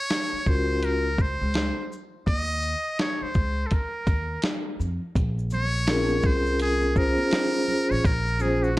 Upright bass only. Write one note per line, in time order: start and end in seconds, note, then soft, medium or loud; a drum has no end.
0.33 muted upright bass stroke soft
0.47 1.37 C#2 medium
1.41 1.69 C#2 medium
2.27 2.73 D#2 medium
3.21 muted upright bass stroke soft
3.35 3.64 C#2 medium
4.07 4.36 D#2 medium
4.79 4.97 F2 medium
5.16 6.20 A#1 loud
6.24 7.14 C2 medium
7.91 8.02 A1 medium
8.05 8.79 A#1 loud